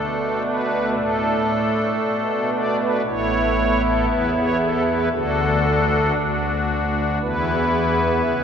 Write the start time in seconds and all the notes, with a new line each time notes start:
Already playing: B2 A3 D4 A4
0.45 B4
0.98 A2 A4
2.02 B2
2.54 D5
2.80 B4
3.07 A1 A2 B3 E4 C#5
3.84 A4
4.08 E2 B4
4.36 C#5
4.61 A4
4.88 B4
5.12 D2 D3 D4 F#4 A4
6.16 D2 F#4
7.22 E2 E3 B3 E4 B4
8.25 C#3